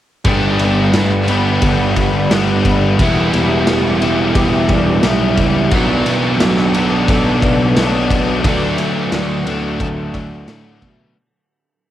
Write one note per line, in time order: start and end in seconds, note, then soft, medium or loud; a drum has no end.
0.24 0.57 G1 medium
0.24 1.26 G2 medium
0.24 1.26 D3 medium
0.24 1.29 G3 medium
0.24 0.94 B3 medium
0.24 1.29 B3 medium
0.24 1.28 D4 medium
0.24 5.68 G4 medium
0.24 2.98 G4 loud
0.24 2.96 F#5 medium
0.24 2.97 B5 medium
0.24 kick loud
0.24 ride medium
0.59 0.91 G1 medium
0.59 ride medium
0.93 1.58 G1 medium
0.93 1.28 B3 medium
0.93 snare loud
0.93 ride medium
1.28 2.29 G2 medium
1.28 2.30 D3 medium
1.28 2.30 G3 medium
1.28 2.30 B3 medium
1.28 2.33 B3 medium
1.28 2.33 D4 medium
1.28 ride medium
1.62 2.27 G1 medium
1.62 kick loud
1.62 ride medium
1.96 4.70 D4 medium
1.96 kick medium
1.96 ride medium
2.31 2.95 G1 medium
2.31 2.97 G2 medium
2.31 2.98 D3 medium
2.31 2.98 G3 medium
2.31 2.65 B3 medium
2.31 3.01 B3 medium
2.31 3.02 D4 medium
2.31 snare loud
2.31 ride medium
2.65 2.99 B3 medium
2.65 kick medium
2.65 ride medium
2.99 3.31 E1 medium
2.99 4.00 E3 medium
2.99 4.00 G3 medium
2.99 3.68 B3 medium
2.99 4.02 B3 medium
2.99 4.00 E4 medium
2.99 5.70 E5 medium
2.99 5.69 D6 medium
2.99 kick loud
2.99 ride medium
3.33 3.65 E1 medium
3.33 ride medium
3.67 3.99 E1 medium
3.67 4.02 B3 medium
3.67 snare loud
3.67 ride medium
4.01 4.33 E1 medium
4.01 5.02 E3 medium
4.01 5.03 G3 medium
4.01 5.04 B3 medium
4.01 5.05 B3 medium
4.01 5.02 E4 medium
4.01 ride medium
4.35 5.00 E1 medium
4.35 5.72 G4 medium
4.35 kick loud
4.35 ride medium
4.69 7.42 D4 medium
4.69 kick medium
4.69 ride medium
5.03 5.36 B1 medium
5.03 5.70 E3 medium
5.03 5.70 G3 medium
5.03 5.38 B3 medium
5.03 5.73 B3 medium
5.03 5.71 E4 medium
5.03 snare loud
5.03 ride medium
5.38 5.70 C#2 medium
5.38 6.75 B3 medium
5.38 kick medium
5.38 ride medium
5.71 6.04 B1 loud
5.71 6.72 B2 medium
5.71 6.75 F#3 loud
5.71 6.40 F#3 medium
5.71 6.74 B3 medium
5.71 6.73 D4 medium
5.71 11.12 B4 medium
5.71 8.41 A5 medium
5.71 11.12 D6 medium
5.71 kick loud
5.71 ride medium
6.06 6.38 B1 medium
6.06 ride medium
6.40 7.04 B1 medium
6.40 7.76 F#3 medium
6.40 snare loud
6.40 ride loud
6.58 snare soft
6.73 7.75 B2 medium
6.73 7.77 F#3 medium
6.73 7.77 B3 medium
6.73 8.11 B3 medium
6.73 7.79 D4 medium
6.73 ride medium
7.08 7.72 B1 medium
7.08 9.50 A4 medium
7.08 kick loud
7.08 ride medium
7.42 10.13 D4 medium
7.42 kick medium
7.42 ride medium
7.76 8.40 B1 medium
7.76 8.42 B2 medium
7.76 8.44 F#3 medium
7.76 8.45 F#3 medium
7.76 8.46 B3 medium
7.76 8.47 D4 medium
7.76 snare loud
7.76 ride medium
8.10 9.46 B3 medium
8.10 kick medium
8.10 ride medium
8.44 8.76 D2 medium
8.44 9.44 D3 medium
8.44 9.11 F#3 medium
8.44 9.45 F#3 medium
8.44 9.46 A3 medium
8.44 9.45 D4 medium
8.44 11.15 F#5 medium
8.44 kick loud
8.44 ride loud
8.78 9.10 D2 medium
8.78 ride medium
9.12 9.44 D2 medium
9.12 10.47 F#3 medium
9.12 snare loud
9.12 ride medium
9.46 9.78 D2 medium
9.46 10.47 D3 medium
9.46 10.48 F#3 medium
9.46 10.47 A3 medium
9.46 10.82 B3 medium
9.46 10.47 D4 medium
9.46 ride medium
9.80 10.44 D2 medium
9.80 11.17 A4 medium
9.80 kick loud
9.80 ride medium
10.14 11.16 D4 medium
10.14 kick medium
10.14 ride medium
10.48 10.80 A2 medium
10.48 11.15 D3 medium
10.48 11.17 F#3 medium
10.48 11.15 F#3 medium
10.48 11.16 A3 medium
10.48 11.16 D4 medium
10.48 snare loud
10.48 ride medium
10.82 11.14 B2 medium
10.82 11.17 B3 medium
10.82 kick medium
10.82 ride medium